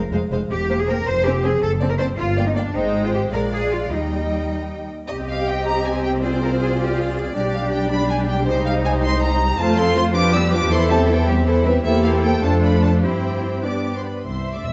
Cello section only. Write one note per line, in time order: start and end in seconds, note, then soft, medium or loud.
0.51 0.77 G4 loud
0.79 0.88 G#4 medium
0.89 1.07 A#4 loud
1.07 1.26 C5 loud
1.26 1.44 G4 loud
1.44 1.62 G#4 loud
1.62 1.70 A4 loud
1.90 1.93 A#4 medium
1.99 2.06 C5 loud
2.18 2.46 F4 loud
2.47 2.56 D#4 medium
2.56 2.75 D4 medium
2.75 3.04 D#4 medium
3.05 3.08 F4 medium
3.14 3.22 G4 medium
3.33 3.41 A#4 medium
3.53 3.72 G#4 medium
3.71 3.91 F4 medium
3.92 4.90 D#4 medium
5.10 6.19 G4 medium
6.24 6.31 G#4 medium
6.43 6.50 A#4 medium
6.61 6.79 G#4 medium
6.80 6.98 G4 medium
6.99 7.17 F4 medium
7.18 7.36 G#4 medium
7.36 7.90 G4 medium
7.92 8.46 D4 medium
8.47 9.58 D#4 medium
9.59 10.14 F4 medium
10.15 10.71 G4 loud
10.72 11.28 A4 medium
11.28 11.46 G4 medium
11.47 11.65 A4 medium
11.66 11.73 B4 medium
11.85 13.01 A4 medium
13.04 13.94 G4 medium
14.26 14.53 C2 medium
14.56 14.65 D2 soft
14.65 14.73 E2 medium